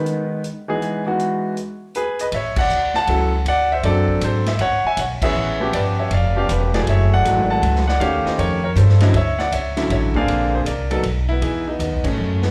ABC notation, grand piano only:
X:1
M:3/4
L:1/8
Q:"Swing" 1/4=158
K:E
V:1 name="Grand piano"
z6 | z4 [GB] [Bd] | [K:A] [ce] [df]2 [fa]3 | [df] [=ce] d2 [Ac] [ce] |
[cf] [eg] [cf] [ce]3 | [Bd] [ce] [d=f] [df] [=GB] [Bd] | [ce] [df]2 [fa]2 [df] | [c=f] [=c^d] [^A^c] [Ac] [=A=c] [cd] |
[ce] [df] [ce]2 [ce] [d=f]- | [d=f] [_A=c] [_Bd]2 z [=B,E]- | [K:E] [B,E] [B,D] [B,D] [A,C]2 [G,B,] |]
V:2 name="Grand piano"
[D,G,B,DB]2 z [E,G,B,DG]2 [E,G,B,DF]- | [E,G,B,DF]2 z4 | [K:A] z4 [F,CEA] z | z2 [F,=CDA]3 z |
z3 [E,B,CG]2 [=F,B,C=G]- | [=F,B,C=G]2 z [F,B,CG]2 [^F,A,E^G]- | [F,A,EG]2 [F,G,A,E]3 z | [^D,A,C=G]3 z2 [=D,F,CE] |
z3 [D,F,CE]2 [D,_B,=CG]- | [D,_B,=CG]2 z [F,=B,^DA] z2 | [K:E] [E,B,DG] z4 z |]